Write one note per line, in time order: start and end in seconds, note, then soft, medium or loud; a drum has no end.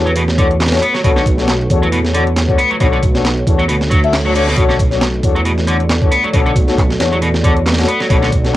0.00 0.80 E2 medium
0.00 8.57 A3 medium
0.00 8.57 F#4 medium
0.00 4.53 B4 medium
0.00 4.56 C#5 medium
0.06 0.10 F#3 medium
0.06 closed hi-hat soft
0.16 0.21 B2 medium
0.16 closed hi-hat medium
0.16 closed hi-hat soft
0.28 snare medium
0.28 closed hi-hat soft
0.38 0.46 D3 medium
0.38 0.51 D4 medium
0.38 0.51 F#4 medium
0.38 0.51 A4 medium
0.38 0.51 C#5 medium
0.38 kick medium
0.38 closed hi-hat medium
0.51 closed hi-hat soft
0.60 snare medium
0.60 clap loud
0.60 closed hi-hat medium
0.60 closed hi-hat soft
0.66 snare medium
0.66 closed hi-hat medium
0.72 0.83 D4 medium
0.72 0.83 F#4 medium
0.72 0.83 A4 medium
0.72 0.83 C#5 medium
0.72 snare medium
0.72 closed hi-hat medium
0.72 closed hi-hat soft
0.77 snare medium
0.77 closed hi-hat medium
0.82 0.93 B3 loud
0.82 closed hi-hat medium
0.94 0.98 F#3 medium
0.94 snare soft
0.94 closed hi-hat soft
1.04 1.68 B1 loud
1.04 1.09 B2 medium
1.04 1.24 D4 medium
1.04 1.24 F#4 medium
1.04 1.24 A4 medium
1.04 1.24 C#5 medium
1.04 kick loud
1.04 closed hi-hat medium
1.04 closed hi-hat soft
1.16 1.20 D3 loud
1.16 snare soft
1.16 closed hi-hat soft
1.26 kick medium
1.26 closed hi-hat medium
1.38 1.49 D4 medium
1.38 1.49 F#4 medium
1.38 1.49 A4 medium
1.38 1.49 C#5 medium
1.38 snare soft
1.38 closed hi-hat soft
1.48 snare loud
1.48 clap medium
1.48 closed hi-hat medium
1.50 closed hi-hat soft
1.61 closed hi-hat soft
1.70 2.56 E2 medium
1.70 1.84 D4 medium
1.70 1.84 F#4 medium
1.70 1.83 A4 medium
1.70 1.83 C#5 medium
1.70 kick medium
1.70 closed hi-hat medium
1.83 1.87 F#3 medium
1.83 closed hi-hat soft
1.92 1.97 B2 medium
1.92 closed hi-hat medium
1.92 closed hi-hat soft
2.05 snare soft
2.05 closed hi-hat soft
2.14 2.23 D3 medium
2.14 2.27 D4 medium
2.14 2.27 F#4 medium
2.14 2.27 A4 medium
2.14 2.27 C#5 medium
2.14 closed hi-hat medium
2.27 closed hi-hat soft
2.37 snare loud
2.37 clap loud
2.37 closed hi-hat medium
2.37 closed hi-hat soft
2.49 2.60 D4 medium
2.49 2.60 F#4 medium
2.49 2.60 A4 medium
2.49 2.60 C#5 medium
2.49 kick medium
2.49 closed hi-hat soft
2.58 2.69 B3 loud
2.58 closed hi-hat medium
2.70 2.75 F#3 medium
2.70 closed hi-hat soft
2.80 3.44 B1 loud
2.80 2.86 B2 medium
2.80 3.00 D4 medium
2.80 3.00 F#4 medium
2.80 3.00 A4 medium
2.80 3.00 C#5 loud
2.80 kick loud
2.80 closed hi-hat medium
2.80 closed hi-hat soft
2.92 2.97 D3 medium
2.92 closed hi-hat soft
3.03 kick medium
3.03 closed hi-hat medium
3.15 3.26 D4 medium
3.15 3.26 F#4 medium
3.15 3.26 A4 medium
3.15 3.26 C#5 medium
3.15 snare medium
3.15 closed hi-hat soft
3.25 snare loud
3.25 clap loud
3.25 closed hi-hat medium
3.25 closed hi-hat soft
3.37 closed hi-hat soft
3.47 3.68 E2 medium
3.47 3.60 D4 medium
3.47 3.60 F#4 medium
3.47 3.60 A4 medium
3.47 3.60 C#5 medium
3.47 kick medium
3.47 closed hi-hat medium
3.59 3.63 F#3 medium
3.59 closed hi-hat soft
3.69 4.55 D2 medium
3.69 3.74 B2 medium
3.69 closed hi-hat medium
3.69 closed hi-hat soft
3.69 reverse cymbal medium
3.81 snare medium
3.81 closed hi-hat soft
3.90 3.99 F#3 medium
3.90 kick medium
3.90 closed hi-hat medium
4.03 4.14 D4 medium
4.03 4.14 F#4 medium
4.03 4.14 A4 medium
4.03 4.14 E5 loud
4.03 closed hi-hat soft
4.13 snare loud
4.13 clap loud
4.13 closed hi-hat soft
4.13 open hi-hat medium
4.25 4.32 F#3 medium
4.25 4.34 D4 medium
4.25 4.34 F#4 medium
4.25 4.34 A4 medium
4.25 4.34 C#5 medium
4.25 closed hi-hat soft
4.35 4.47 D3 medium
4.35 4.48 D4 medium
4.35 4.48 F#4 medium
4.35 4.48 A4 medium
4.35 4.48 C#5 loud
4.35 closed hi-hat medium
4.47 4.56 B2 medium
4.47 snare soft
4.47 closed hi-hat soft
4.57 5.21 B1 loud
4.57 4.62 B2 medium
4.57 4.77 D4 medium
4.57 4.77 F#4 medium
4.57 8.57 A4 medium
4.57 4.77 A4 medium
4.57 4.77 C#5 loud
4.57 8.57 D5 medium
4.57 kick loud
4.57 closed hi-hat medium
4.57 closed hi-hat soft
4.69 4.73 D3 loud
4.69 snare soft
4.69 closed hi-hat soft
4.79 kick medium
4.79 closed hi-hat medium
4.91 5.02 D4 medium
4.91 5.02 F#4 medium
4.91 5.02 A4 medium
4.91 5.02 C#5 medium
4.91 snare soft
4.91 closed hi-hat soft
5.01 snare loud
5.01 clap loud
5.01 closed hi-hat medium
5.01 closed hi-hat soft
5.14 closed hi-hat soft
5.23 6.09 E2 medium
5.23 5.36 D4 medium
5.23 5.37 F#4 medium
5.23 5.37 A4 medium
5.23 5.37 C#5 medium
5.23 kick medium
5.23 closed hi-hat medium
5.36 5.40 F#3 medium
5.36 closed hi-hat soft
5.45 5.50 B2 medium
5.45 closed hi-hat medium
5.45 closed hi-hat soft
5.58 snare soft
5.58 closed hi-hat soft
5.67 5.76 D3 medium
5.67 5.81 D4 medium
5.67 5.81 F#4 medium
5.67 5.81 A4 medium
5.67 5.81 C#5 medium
5.67 closed hi-hat medium
5.80 closed hi-hat soft
5.89 snare loud
5.89 clap loud
5.89 closed hi-hat medium
5.89 closed hi-hat soft
6.02 6.13 D4 medium
6.02 6.13 F#4 medium
6.02 6.13 A4 medium
6.02 6.13 C#5 medium
6.02 kick medium
6.02 closed hi-hat soft
6.12 6.23 B3 medium
6.12 closed hi-hat medium
6.24 6.28 F#3 medium
6.24 closed hi-hat soft
6.33 6.97 B1 loud
6.33 6.39 B2 medium
6.33 6.53 D4 medium
6.33 6.53 F#4 medium
6.33 6.53 A4 medium
6.33 6.53 C#5 medium
6.33 kick loud
6.33 closed hi-hat medium
6.33 closed hi-hat soft
6.46 6.50 D3 loud
6.46 closed hi-hat soft
6.56 kick loud
6.56 closed hi-hat medium
6.68 6.79 D4 medium
6.68 6.79 F#4 medium
6.68 6.79 A4 medium
6.68 6.79 C#5 medium
6.68 snare soft
6.68 closed hi-hat soft
6.78 kick medium
6.78 clap loud
6.78 closed hi-hat medium
6.78 closed hi-hat soft
6.90 snare soft
6.90 closed hi-hat soft
7.00 7.85 E2 medium
7.00 7.13 D4 medium
7.00 7.13 F#4 medium
7.00 7.13 A4 medium
7.00 7.13 C#5 medium
7.00 snare loud
7.00 closed hi-hat medium
7.12 7.16 F#3 medium
7.12 closed hi-hat soft
7.22 7.27 B2 medium
7.22 closed hi-hat medium
7.22 closed hi-hat soft
7.34 snare medium
7.34 closed hi-hat soft
7.44 7.52 D3 medium
7.44 7.57 D4 medium
7.44 7.57 F#4 medium
7.44 7.57 A4 medium
7.44 7.57 C#5 medium
7.44 kick medium
7.44 closed hi-hat medium
7.57 closed hi-hat soft
7.66 snare medium
7.66 clap loud
7.66 closed hi-hat medium
7.66 closed hi-hat soft
7.72 snare medium
7.72 closed hi-hat medium
7.78 7.89 D4 medium
7.78 7.89 F#4 medium
7.78 7.89 A4 medium
7.78 7.89 C#5 medium
7.78 snare medium
7.78 closed hi-hat medium
7.78 closed hi-hat soft
7.83 snare medium
7.83 closed hi-hat medium
7.88 7.99 B3 loud
7.88 closed hi-hat medium
8.00 8.04 F#3 medium
8.00 snare soft
8.00 closed hi-hat soft
8.10 8.57 B1 loud
8.10 8.15 B2 medium
8.10 8.29 D4 medium
8.10 8.30 F#4 medium
8.10 8.29 A4 medium
8.10 8.30 C#5 loud
8.10 kick loud
8.10 closed hi-hat medium
8.10 closed hi-hat soft
8.22 8.26 D3 loud
8.22 snare soft
8.22 closed hi-hat soft
8.32 kick medium
8.32 closed hi-hat medium
8.45 8.55 D4 medium
8.45 8.55 F#4 medium
8.45 8.55 A4 medium
8.45 8.55 C#5 medium
8.45 snare soft
8.45 closed hi-hat soft